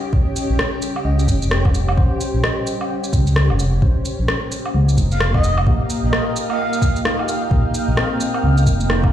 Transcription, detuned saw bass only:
0.13 A#1
0.50 A#1
1.05 C#2
1.28 F1
1.97 A#1
2.34 A#1
3.13 C#2
3.49 F1
3.73 F1
3.82 A#1
4.19 A#1
4.74 C#2
4.98 F1
5.67 A#1
6.03 A#1
7.51 A#1
7.88 A#1
8.44 C#2
8.66 F1

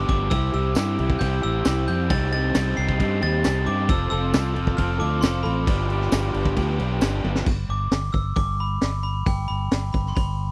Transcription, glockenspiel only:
0.09 D6
0.30 E6
0.54 E6
1.19 G6
1.43 E6
1.88 G6
2.10 A6
2.33 A6
2.77 C7
3.23 A6
3.67 D6
3.90 E6
4.10 E6
4.77 F6
5.00 D6
5.21 C6
5.43 B5
7.70 D6
8.13 E6
8.36 D6
8.60 B5
9.03 B5
9.26 G5
9.48 B5
9.93 B5
10.08 C6
10.16 B5

